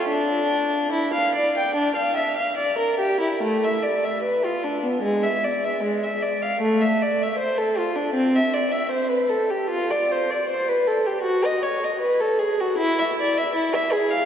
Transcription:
0.09 0.91 D4 medium
0.92 1.13 E4 medium
1.13 1.34 F5 medium
1.35 1.55 D5 medium
1.57 1.76 G5 medium
1.75 1.95 D4 medium
1.96 2.15 F5 medium
2.16 2.36 E5 medium
2.36 2.56 F5 soft
2.57 2.77 D5 medium
2.78 2.99 A#4 medium
2.99 3.21 G4 medium
3.20 3.42 E4 soft
3.43 3.63 A3 medium
3.64 3.84 E5 soft
3.83 4.04 D5 soft
4.04 4.24 E5 soft
4.23 4.43 B4 medium
4.44 4.64 F4 soft
4.63 4.83 D4 soft
4.83 5.03 B3 soft
5.02 5.22 G#3 medium
5.23 5.43 E5 soft
5.44 5.63 D5 soft
5.64 5.83 E5 soft
5.83 6.02 G#3 soft
6.03 6.22 E5 soft
6.22 6.42 D5 soft
6.42 6.61 F5 soft
6.61 6.80 A3 medium
6.81 7.00 E5 soft
7.02 7.20 D5 soft
7.22 7.40 E5 soft
7.38 7.58 C5 medium
7.58 7.77 A4 soft
7.78 7.97 F4 soft
7.95 8.15 D4 soft
8.14 8.33 C4 medium
8.35 8.54 E5 soft
8.54 8.73 D5 soft
8.71 8.91 E5 soft
8.91 9.10 C5 medium
9.08 9.29 B4 soft
9.29 9.49 A4 soft
9.50 9.70 G4 soft
9.70 9.90 F4 medium
9.90 10.10 D5 medium
10.11 10.30 C5 soft
10.30 10.49 D5 soft
10.49 10.68 C5 medium
10.68 10.87 B4 medium
10.87 11.06 A4 soft
11.06 11.25 G4 soft
11.22 11.42 F#4 medium
11.45 11.63 D#5 medium
11.63 11.82 C#5 soft
11.84 12.02 D#5 soft
12.01 12.20 B4 medium
12.20 12.40 A4 soft
12.39 12.58 G#4 medium
12.60 12.79 F#4 soft
12.78 12.97 E4 medium
12.99 13.17 E5 medium
13.21 13.37 D5 medium
13.37 13.55 E5 medium
13.55 13.72 E4 medium
13.74 13.92 E5 medium
13.92 14.10 G#4 medium
14.11 14.25 F5 medium

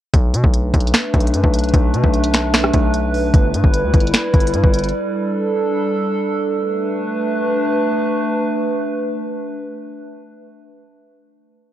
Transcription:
0.14 0.35 B1 loud
0.14 3.31 A3 medium
0.14 3.31 D4 medium
0.14 4.90 B4 medium
0.14 kick loud
0.14 closed hi-hat loud
0.34 0.43 B2 loud
0.34 closed hi-hat medium
0.44 0.73 B1 loud
0.44 kick loud
0.54 closed hi-hat medium
0.74 0.93 B1 loud
0.74 kick medium
0.74 closed hi-hat medium
0.80 closed hi-hat medium
0.87 closed hi-hat medium
0.94 finger snap loud
0.94 snare loud
0.94 closed hi-hat medium
1.14 1.35 B1 loud
1.14 kick medium
1.14 closed hi-hat soft
1.20 closed hi-hat medium
1.27 closed hi-hat medium
1.34 1.43 F#2 loud
1.34 closed hi-hat medium
1.44 1.73 B1 loud
1.44 kick loud
1.54 closed hi-hat medium
1.59 closed hi-hat medium
1.64 closed hi-hat medium
1.69 closed hi-hat soft
1.74 1.95 B1 loud
1.74 kick loud
1.74 closed hi-hat loud
1.94 2.03 B2 loud
1.94 closed hi-hat medium
2.04 2.71 B1 loud
2.04 kick loud
2.14 closed hi-hat medium
2.24 closed hi-hat medium
2.34 finger snap medium
2.34 snare loud
2.34 closed hi-hat medium
2.54 finger snap medium
2.54 snare loud
2.54 closed hi-hat medium
2.64 cross-stick loud
2.73 3.31 B1 loud
2.73 kick loud
2.73 closed hi-hat medium
2.94 closed hi-hat medium
3.14 open hi-hat medium
3.34 3.55 G1 loud
3.34 6.51 G3 medium
3.34 4.92 E4 medium
3.34 kick loud
3.34 closed hi-hat loud
3.54 3.63 G2 loud
3.54 closed hi-hat medium
3.64 3.85 G1 loud
3.64 kick medium
3.74 closed hi-hat medium
3.84 3.93 D2 loud
3.94 4.13 G1 loud
3.94 kick medium
3.94 closed hi-hat medium
4.00 closed hi-hat medium
4.07 closed hi-hat medium
4.14 finger snap loud
4.14 snare loud
4.14 closed hi-hat medium
4.34 4.55 G1 loud
4.34 kick medium
4.34 closed hi-hat soft
4.40 closed hi-hat medium
4.47 closed hi-hat medium
4.54 4.63 G2 loud
4.54 closed hi-hat medium
4.64 4.93 G1 loud
4.64 kick loud
4.74 closed hi-hat medium
4.79 closed hi-hat medium
4.84 closed hi-hat medium
4.89 closed hi-hat soft
4.94 6.52 D4 medium
4.94 6.52 A4 medium
6.54 10.50 A3 medium
6.54 10.50 D4 medium
6.54 10.50 B4 medium

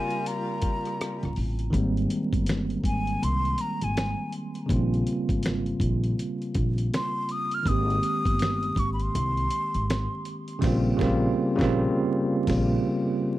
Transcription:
0.00 1.68 C#3 medium
0.00 1.32 G3 medium
0.00 1.69 G3 medium
0.00 1.70 A#3 soft
0.00 1.71 C4 soft
0.00 1.32 F4 medium
0.00 1.72 F4 medium
0.00 1.32 A#4 medium
0.00 0.29 G#5 medium
0.10 closed hi-hat soft
0.26 1.37 A#5 medium
0.26 closed hi-hat medium
0.62 kick medium
0.62 closed hi-hat medium
0.85 cross-stick soft
0.85 closed hi-hat soft
1.01 cross-stick loud
1.01 closed hi-hat medium
1.23 1.34 C#2 medium
1.23 cross-stick soft
1.23 closed hi-hat soft
1.36 1.67 A1 medium
1.36 open hi-hat soft
1.59 closed hi-hat soft
1.70 2.04 G#1 loud
1.70 4.64 D#3 medium
1.70 4.65 G#3 medium
1.70 4.66 A#3 medium
1.70 kick medium
1.70 closed hi-hat medium
1.76 4.67 G3 medium
1.76 4.67 C4 medium
1.97 closed hi-hat soft
2.10 closed hi-hat medium
2.33 2.75 G1 medium
2.33 kick loud
2.33 closed hi-hat soft
2.46 finger snap medium
2.46 snare loud
2.46 closed hi-hat medium
2.70 closed hi-hat soft
2.84 3.15 G#1 medium
2.84 3.25 G#5 medium
2.84 kick medium
2.84 closed hi-hat medium
3.07 closed hi-hat soft
3.22 3.52 C2 medium
3.22 3.62 C6 loud
3.22 closed hi-hat medium
3.45 closed hi-hat soft
3.58 3.85 A#5 medium
3.58 closed hi-hat medium
3.81 4.12 G#1 medium
3.81 4.34 G#5 medium
3.81 closed hi-hat soft
3.97 finger snap medium
3.97 snare loud
3.97 closed hi-hat medium
4.32 closed hi-hat soft
4.55 closed hi-hat soft
4.66 5.00 A#1 loud
4.66 7.60 C#3 medium
4.66 7.61 G3 medium
4.66 kick loud
4.70 7.62 A#3 medium
4.70 7.63 C4 medium
4.70 7.64 F4 medium
4.70 closed hi-hat medium
4.94 closed hi-hat soft
5.07 closed hi-hat medium
5.29 5.71 G#1 medium
5.29 kick loud
5.29 closed hi-hat soft
5.43 finger snap loud
5.43 snare loud
5.43 closed hi-hat medium
5.66 closed hi-hat soft
5.80 6.11 A#1 medium
5.80 kick medium
5.80 closed hi-hat medium
6.04 closed hi-hat soft
6.19 closed hi-hat medium
6.42 closed hi-hat soft
6.54 6.86 A#1 medium
6.54 kick medium
6.54 closed hi-hat medium
6.78 closed hi-hat soft
6.94 7.33 C6 medium
6.94 finger snap medium
6.94 snare loud
6.94 closed hi-hat medium
7.29 7.56 D#6 medium
7.29 closed hi-hat medium
7.51 7.70 F6 loud
7.51 closed hi-hat soft
7.63 7.96 G#1 loud
7.63 10.57 D#3 medium
7.63 10.58 G#3 medium
7.63 kick medium
7.63 closed hi-hat medium
7.67 10.59 A#3 soft
7.67 10.60 C4 medium
7.67 10.61 G4 medium
7.67 8.81 D#6 loud
7.90 closed hi-hat soft
8.03 closed hi-hat medium
8.25 8.68 G1 medium
8.25 kick loud
8.25 closed hi-hat soft
8.39 finger snap medium
8.39 snare loud
8.39 closed hi-hat medium
8.63 closed hi-hat soft
8.76 9.07 G#1 medium
8.76 8.92 C#6 medium
8.76 kick medium
8.76 closed hi-hat medium
8.93 9.04 B5 medium
9.00 10.26 C6 medium
9.00 closed hi-hat soft
9.15 9.45 C2 medium
9.15 closed hi-hat medium
9.37 closed hi-hat soft
9.50 closed hi-hat medium
9.74 10.05 G#1 medium
9.74 closed hi-hat soft
9.90 finger snap medium
9.90 snare loud
9.90 closed hi-hat medium
10.25 closed hi-hat medium
10.48 closed hi-hat soft
10.59 10.89 A#1 loud
10.59 10.87 C#3 medium
10.59 10.88 G3 medium
10.59 10.89 A#3 medium
10.59 kick medium
10.59 crash medium
10.64 10.90 C4 medium
10.64 10.92 F4 medium
10.64 snare medium
10.96 11.26 A#1 loud
10.96 11.24 C#3 medium
10.96 11.25 G3 medium
10.96 kick loud
11.01 11.27 A#3 medium
11.01 11.28 C4 medium
11.01 11.29 F4 medium
11.01 snare loud
11.55 11.83 A#1 loud
11.55 11.81 C#3 loud
11.55 11.82 G3 loud
11.55 kick loud
11.60 11.83 A#3 medium
11.60 11.84 C4 loud
11.60 snare loud
11.64 11.85 F4 medium
12.47 12.74 A#1 medium
12.47 kick medium
12.47 snare loud
12.47 crash medium

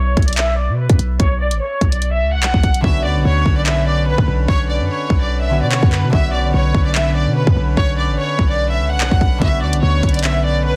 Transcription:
0.00 0.16 B1 loud
0.00 0.26 C#5 medium
0.17 0.70 B1 loud
0.17 kick loud
0.17 closed hi-hat soft
0.22 closed hi-hat medium
0.28 0.37 D5 medium
0.28 closed hi-hat medium
0.33 closed hi-hat medium
0.37 0.56 E5 medium
0.37 clap loud
0.37 closed hi-hat medium
0.58 0.77 D5 medium
0.69 0.88 B2 loud
0.79 0.98 B4 medium
0.90 0.98 F#2 loud
0.90 kick medium
0.90 closed hi-hat medium
0.99 1.19 B1 loud
0.99 closed hi-hat medium
1.20 1.53 B1 loud
1.20 1.39 C#5 loud
1.20 kick loud
1.20 closed hi-hat medium
1.40 1.59 D5 medium
1.51 1.60 A1 loud
1.51 closed hi-hat medium
1.61 1.90 C#5 medium
1.81 2.24 B1 loud
1.81 kick loud
1.81 closed hi-hat soft
1.92 2.11 D5 medium
1.92 closed hi-hat medium
2.02 closed hi-hat medium
2.13 2.32 E5 medium
2.22 2.40 C#2 loud
2.33 2.81 F#5 medium
2.38 2.53 B1 loud
2.43 clap loud
2.43 closed hi-hat medium
2.54 2.63 B1 loud
2.54 kick medium
2.63 2.83 B1 loud
2.63 kick loud
2.63 closed hi-hat medium
2.74 closed hi-hat medium
2.81 3.06 B1 loud
2.81 5.48 D3 medium
2.81 10.76 D3 medium
2.81 5.50 B3 medium
2.81 5.51 C#4 medium
2.81 10.76 C#4 medium
2.81 10.76 B4 medium
2.81 3.03 E5 loud
2.81 kick loud
2.86 5.48 F#4 medium
2.86 5.49 B4 medium
3.05 3.17 D2 loud
3.05 3.24 D5 medium
3.16 3.25 B1 loud
3.25 3.45 D2 loud
3.25 3.55 C#5 medium
3.46 4.15 B1 loud
3.46 kick loud
3.57 3.66 D5 medium
3.66 3.85 E5 medium
3.66 clap loud
3.87 4.06 D5 medium
4.07 4.26 B4 medium
4.18 4.27 D2 loud
4.18 kick medium
4.28 4.48 B1 loud
4.48 4.81 B1 loud
4.48 4.67 C#5 loud
4.48 kick loud
4.69 4.88 D5 medium
4.80 4.89 F#2 loud
4.90 5.19 C#5 medium
5.10 5.64 B1 loud
5.10 kick loud
5.21 5.40 D5 medium
5.42 5.61 E5 medium
5.50 6.09 D3 soft
5.50 6.11 B3 medium
5.50 6.13 C#4 soft
5.50 6.14 F#4 soft
5.50 6.16 B4 medium
5.62 5.82 B2 loud
5.62 5.71 D5 medium
5.72 5.91 C#5 medium
5.72 clap loud
5.83 6.05 F#2 loud
5.83 kick medium
5.92 6.11 B4 medium
5.92 clap medium
6.03 6.12 B2 loud
6.10 6.52 B1 loud
6.10 9.37 D3 medium
6.10 9.37 B3 medium
6.10 9.38 C#4 medium
6.10 6.32 E5 loud
6.10 kick loud
6.15 9.39 F#4 medium
6.15 9.39 B4 medium
6.33 6.52 D5 medium
6.54 6.74 B1 loud
6.54 6.84 C#5 medium
6.75 7.28 B1 loud
6.75 kick loud
6.86 6.94 D5 medium
6.95 7.14 E5 medium
6.95 clap loud
7.16 7.35 D5 medium
7.26 7.46 B2 loud
7.36 7.55 B4 medium
7.47 7.56 F#2 loud
7.47 kick medium
7.57 7.76 B1 loud
7.77 8.10 B1 loud
7.77 7.96 C#5 loud
7.77 kick loud
7.98 8.17 D5 medium
8.09 8.18 A1 loud
8.18 8.48 C#5 medium
8.39 8.81 B1 loud
8.39 kick loud
8.50 8.69 D5 medium
8.70 8.89 E5 medium
8.80 8.97 C#2 loud
8.91 9.39 F#5 medium
8.96 9.11 B1 loud
9.00 clap loud
9.11 9.20 B1 loud
9.11 kick medium
9.21 9.41 B1 loud
9.21 kick loud
9.38 9.64 B1 loud
9.38 10.76 D3 medium
9.38 10.76 B3 medium
9.38 10.76 C#4 medium
9.38 9.61 E5 loud
9.38 kick loud
9.38 closed hi-hat soft
9.43 10.76 F#4 medium
9.43 10.76 B4 medium
9.62 9.75 D2 loud
9.62 9.81 D5 medium
9.73 9.82 B1 loud
9.73 closed hi-hat medium
9.83 10.02 D2 loud
9.83 10.12 C#5 medium
10.03 10.73 B1 loud
10.03 kick loud
10.03 closed hi-hat soft
10.09 closed hi-hat medium
10.14 10.23 D5 medium
10.14 closed hi-hat medium
10.19 closed hi-hat medium
10.24 10.43 E5 medium
10.24 clap loud
10.24 closed hi-hat medium
10.44 10.63 D5 medium
10.65 10.76 B4 medium

